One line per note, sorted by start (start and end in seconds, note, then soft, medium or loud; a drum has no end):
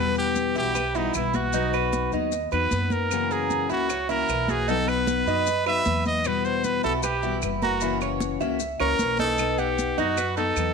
0.00 0.52 E2 medium
0.00 0.55 B2 medium
0.00 0.56 E3 medium
0.00 0.56 G3 medium
0.00 0.56 B3 medium
0.00 0.17 B4 loud
0.16 0.54 G4 medium
0.16 high conga soft
0.16 maracas soft
0.35 high conga medium
0.35 maracas medium
0.56 1.11 B1 medium
0.56 0.75 E3 medium
0.56 0.75 G3 medium
0.56 0.75 B3 medium
0.56 0.75 E4 medium
0.56 0.75 F#4 medium
0.56 0.98 G4 medium
0.56 high conga soft
0.56 maracas soft
0.75 0.94 B4 medium
0.75 muted steel-string acoustic guitar stroke medium
0.75 high conga soft
0.75 claves medium
0.75 maracas medium
0.95 1.14 E3 soft
0.95 1.15 G3 medium
0.95 1.15 B3 medium
0.95 1.15 D#4 medium
0.95 1.33 E4 medium
0.95 1.15 F#4 medium
0.95 high conga soft
0.95 maracas soft
1.14 2.07 B1 medium
1.14 1.54 E3 soft
1.14 1.54 G3 soft
1.14 1.54 B3 soft
1.14 1.37 E4 medium
1.14 1.54 F#4 medium
1.14 high conga soft
1.14 claves medium
1.14 maracas medium
1.34 1.54 F#4 medium
1.34 2.14 F#4 medium
1.34 high conga medium
1.34 maracas soft
1.53 2.12 B2 medium
1.53 2.14 F#3 medium
1.53 2.13 B3 medium
1.53 1.73 D#4 medium
1.53 2.12 D#4 medium
1.53 2.12 F#4 medium
1.53 high conga soft
1.53 maracas medium
1.73 2.12 B4 medium
1.73 high conga soft
1.73 claves medium
1.73 maracas soft
1.93 high conga medium
1.93 maracas medium
2.12 2.49 D#2 medium
2.12 2.33 F#3 medium
2.12 2.32 B3 medium
2.12 2.32 D#4 medium
2.12 2.32 F#4 medium
2.12 2.51 D#5 medium
2.12 high conga soft
2.12 maracas soft
2.32 muted steel-string acoustic guitar stroke medium
2.32 high conga soft
2.32 maracas medium
2.51 2.71 E2 medium
2.51 2.71 F#3 medium
2.51 2.71 B3 medium
2.51 2.72 D#4 medium
2.51 2.71 F#4 medium
2.51 2.90 B4 medium
2.51 2.94 B4 medium
2.51 high conga soft
2.51 claves medium
2.51 maracas soft
2.71 3.64 F#2 medium
2.71 3.11 F#3 soft
2.71 3.11 B3 soft
2.71 3.11 D#4 soft
2.71 3.11 F#4 soft
2.71 high conga medium
2.71 maracas medium
2.90 3.34 A#4 medium
2.90 high conga medium
2.90 maracas soft
3.10 3.70 C#3 medium
3.10 3.70 E3 medium
3.10 3.70 A#3 medium
3.10 3.69 C#4 medium
3.10 3.69 F#4 medium
3.10 high conga soft
3.10 claves medium
3.10 maracas medium
3.30 3.71 G#4 medium
3.30 3.69 A#4 medium
3.30 high conga soft
3.30 maracas soft
3.50 high conga medium
3.50 maracas medium
3.69 4.25 C#2 medium
3.69 3.89 E3 medium
3.69 3.90 A#3 medium
3.69 3.89 C#4 medium
3.69 3.89 E4 medium
3.69 3.89 F#4 medium
3.69 4.08 F#4 medium
3.69 high conga soft
3.69 maracas soft
3.89 4.09 C#5 medium
3.89 muted steel-string acoustic guitar stroke medium
3.89 high conga soft
3.89 claves medium
3.89 maracas medium
4.09 4.28 E3 medium
4.09 4.29 A#3 medium
4.09 4.29 C#4 medium
4.09 4.47 E4 medium
4.09 4.28 F#4 medium
4.09 4.52 A#4 medium
4.09 high conga soft
4.09 maracas soft
4.29 5.21 B1 medium
4.29 4.68 E3 soft
4.29 4.68 A#3 soft
4.29 4.68 C#4 soft
4.29 4.69 F#4 soft
4.29 high conga soft
4.29 claves medium
4.29 maracas medium
4.48 4.68 F#4 medium
4.48 4.70 G#4 medium
4.48 high conga medium
4.48 maracas soft
4.68 5.27 B2 medium
4.68 5.28 F#3 medium
4.68 5.28 B3 medium
4.68 4.87 D#4 medium
4.68 5.27 D#4 medium
4.68 5.27 F#4 medium
4.68 4.90 A4 loud
4.68 high conga soft
4.68 maracas medium
4.88 5.26 B4 medium
4.88 5.67 B4 medium
4.88 high conga soft
4.88 claves medium
4.88 maracas soft
5.07 high conga medium
5.07 maracas medium
5.27 5.82 F#2 medium
5.27 5.47 F#3 medium
5.27 5.47 B3 medium
5.27 5.47 D#4 medium
5.27 5.46 F#4 medium
5.27 5.66 D#5 medium
5.27 high conga soft
5.27 maracas soft
5.47 muted steel-string acoustic guitar stroke medium
5.47 high conga soft
5.47 maracas medium
5.66 5.85 F#3 soft
5.66 5.86 B3 soft
5.66 5.86 D#4 soft
5.66 5.85 F#4 medium
5.66 6.04 B4 medium
5.66 6.04 E5 loud
5.66 high conga soft
5.66 claves medium
5.66 maracas soft
5.85 6.78 E2 medium
5.85 6.25 F#3 soft
5.85 6.24 B3 soft
5.85 6.25 D#4 soft
5.85 6.25 F#4 soft
5.85 high conga medium
5.85 maracas medium
6.05 6.29 D#5 medium
6.05 high conga medium
6.05 maracas soft
6.24 6.83 B2 medium
6.24 6.85 E3 medium
6.24 6.84 G3 medium
6.24 6.84 B3 medium
6.24 6.83 F#4 medium
6.24 6.47 B4 medium
6.24 high conga soft
6.24 claves medium
6.24 maracas medium
6.45 6.66 C5 medium
6.45 high conga soft
6.45 maracas soft
6.64 6.84 B4 medium
6.64 high conga medium
6.64 maracas medium
6.83 7.39 B1 medium
6.83 7.02 E3 medium
6.83 7.03 G3 medium
6.83 7.03 B3 medium
6.83 7.03 E4 medium
6.83 7.03 F#4 medium
6.83 6.93 A4 medium
6.83 high conga soft
6.83 maracas soft
7.03 7.40 G4 medium
7.03 7.22 B4 medium
7.03 muted steel-string acoustic guitar stroke medium
7.03 high conga soft
7.03 claves medium
7.03 maracas medium
7.23 7.41 E3 medium
7.23 7.41 G3 medium
7.23 7.42 B3 medium
7.23 7.61 E4 medium
7.23 7.42 F#4 medium
7.23 high conga soft
7.23 maracas soft
7.42 8.35 F#1 medium
7.42 7.81 E3 soft
7.42 7.81 G3 soft
7.42 7.82 B3 soft
7.42 7.82 F#4 soft
7.42 high conga soft
7.42 claves medium
7.42 maracas medium
7.62 8.00 F#4 medium
7.62 7.82 A#4 medium
7.62 high conga medium
7.62 maracas soft
7.81 8.40 C#3 medium
7.81 8.40 E3 medium
7.81 8.40 A#3 medium
7.81 8.39 C#4 medium
7.81 8.01 E4 medium
7.81 8.40 F#4 medium
7.81 high conga soft
7.81 maracas medium
8.01 8.40 C#5 medium
8.01 high conga soft
8.01 claves medium
8.01 maracas soft
8.21 high conga medium
8.21 maracas medium
8.40 8.78 C#2 medium
8.40 8.59 E3 soft
8.40 8.59 A#3 medium
8.40 8.60 C#4 medium
8.40 8.60 F#4 medium
8.40 8.79 E5 medium
8.40 high conga soft
8.40 maracas soft
8.60 muted steel-string acoustic guitar stroke medium
8.60 high conga soft
8.60 maracas medium
8.80 8.99 C#2 medium
8.80 8.98 E3 medium
8.80 8.98 A#3 medium
8.80 8.99 C#4 medium
8.80 8.99 F#4 medium
8.80 9.17 A#4 loud
8.80 9.18 C#5 medium
8.80 high conga soft
8.80 claves medium
8.80 maracas soft
8.99 9.92 B1 medium
8.99 9.38 E3 soft
8.99 9.38 A#3 soft
8.99 9.38 C#4 medium
8.99 high conga medium
8.99 maracas medium
9.18 9.58 D#4 medium
9.18 9.60 A4 loud
9.18 high conga medium
9.18 maracas soft
9.38 9.97 B2 medium
9.38 9.98 B3 medium
9.38 9.97 D#4 medium
9.38 high conga soft
9.38 claves medium
9.38 maracas medium
9.58 10.00 G4 medium
9.58 9.97 F#5 medium
9.58 high conga soft
9.58 maracas soft
9.79 high conga medium
9.79 maracas medium
9.98 10.53 F#2 medium
9.98 10.16 F#3 medium
9.98 10.16 B3 medium
9.98 10.17 D#4 medium
9.98 10.17 F#4 medium
9.98 10.37 F#4 medium
9.98 high conga soft
9.98 maracas soft
10.17 10.37 B4 medium
10.17 muted steel-string acoustic guitar stroke medium
10.17 high conga soft
10.17 claves medium
10.17 maracas medium
10.37 10.56 F#3 soft
10.37 10.56 B3 medium
10.37 10.74 D#4 medium
10.37 10.56 D#4 soft
10.37 10.56 F#4 medium
10.37 10.74 A4 medium
10.37 high conga soft
10.37 maracas soft
10.56 10.74 E2 medium
10.56 10.74 F#3 soft
10.56 10.74 B3 soft
10.56 10.74 D#4 soft
10.56 10.74 F#4 soft
10.56 high conga soft
10.56 claves medium
10.56 maracas medium